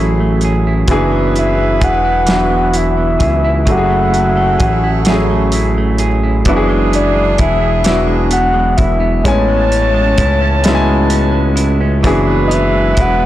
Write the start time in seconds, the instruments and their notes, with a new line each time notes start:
Already playing: analog synth bass A1, grand piano F#3 A3 C#4 E4 G#4, clean electric guitar F#3 A3 G#4, horn section A3 C#4 E4, soft synth lead C#5
0.00 clean electric guitar E4
0.20 clean electric guitar A3
0.41 clean electric guitar G#4, closed hi-hat
0.67 clean electric guitar E4
0.88 analog synth bass F#1, clean electric guitar E3, grand piano F#3 B3 D4 E4 G#4, horn section E4 G#4 B4, kick, closed hi-hat
0.92 clean electric guitar G#4
1.12 clean electric guitar B3
1.36 clean electric guitar E4, soft synth lead E5, closed hi-hat
1.58 clean electric guitar B3
1.80 analog synth bass E1, clean electric guitar G#4, soft synth lead F#5, kick, closed hi-hat
2.05 clean electric guitar E4
2.26 clean electric guitar E3 G#4, grand piano F#3 B3 D4, snare, closed hi-hat
2.31 grand piano E4 F#4
2.50 clean electric guitar B3
2.74 clean electric guitar E4, soft synth lead E5, closed hi-hat
2.98 clean electric guitar B3
3.19 analog synth bass C#2, clean electric guitar G#4, kick, closed hi-hat
3.44 clean electric guitar E4
3.65 analog synth bass F#1, clean electric guitar F#3 G#4, grand piano F#3 A3, horn section A3 C#4 E4, kick, closed hi-hat
3.70 grand piano C#4 E4 G4, soft synth lead F#5
3.78 grand piano G#4
3.90 clean electric guitar A3
4.12 clean electric guitar E4, closed hi-hat
4.37 clean electric guitar A3
4.58 analog synth bass A1, clean electric guitar G#4, kick, closed hi-hat
4.84 clean electric guitar E4
5.05 clean electric guitar F#3 G#4, grand piano F#3 A3 C#4 E4, snare, closed hi-hat
5.10 grand piano G#4
5.30 clean electric guitar A3
5.52 clean electric guitar E4, closed hi-hat
5.78 clean electric guitar A3
5.98 clean electric guitar G#4, closed hi-hat
6.23 clean electric guitar E4
6.45 analog synth bass F#1, clean electric guitar E3 E4, grand piano F#3 B3 D4 E4, horn section D4 E4 G#4, kick, closed hi-hat
6.50 grand piano F#4
6.57 grand piano G#4
6.69 clean electric guitar G#3
6.93 clean electric guitar B3, soft synth lead D5, closed hi-hat
7.15 clean electric guitar G#3
7.38 analog synth bass E1, clean electric guitar E4, soft synth lead E5, kick, closed hi-hat
7.61 clean electric guitar B3
7.84 clean electric guitar E3 E4, grand piano F#3 B3 D4, soft synth lead E5, snare, closed hi-hat
7.88 grand piano E4 F#4
8.07 clean electric guitar G#3
8.31 clean electric guitar B3, soft synth lead F#5, closed hi-hat
8.54 clean electric guitar G#3
8.77 analog synth bass E1, clean electric guitar E4, soft synth lead E5, kick, closed hi-hat
9.00 clean electric guitar B3
9.24 analog synth bass A1, clean electric guitar A2 E4, grand piano G#3 B3 C#4 E4 G#5, horn section C#4 E4 A5, soft synth lead C#5, kick, closed hi-hat
9.48 clean electric guitar G#3
9.72 clean electric guitar C#4, closed hi-hat
9.94 clean electric guitar G#3
10.17 analog synth bass C#2, clean electric guitar E4, kick, closed hi-hat
10.42 clean electric guitar C#4
10.63 clean electric guitar A2 E4, grand piano G#3 B3 C#4, snare, closed hi-hat
10.67 grand piano E4 F#4
10.75 grand piano G#5
10.87 clean electric guitar G#3
11.10 clean electric guitar C#4, closed hi-hat
11.32 clean electric guitar G#3
11.56 clean electric guitar E4, closed hi-hat
11.81 clean electric guitar C#4
12.03 analog synth bass F#1, clean electric guitar E3 E4, grand piano F#3 B3 D4 E4 G#4, horn section E4 G#4 B4, kick, closed hi-hat
12.27 clean electric guitar G#3
12.47 clean electric guitar B3, soft synth lead D#5, closed hi-hat
12.54 soft synth lead E5
12.72 clean electric guitar G#3
12.95 analog synth bass E1, clean electric guitar E4, kick, closed hi-hat
13.01 soft synth lead F#5
13.19 clean electric guitar B3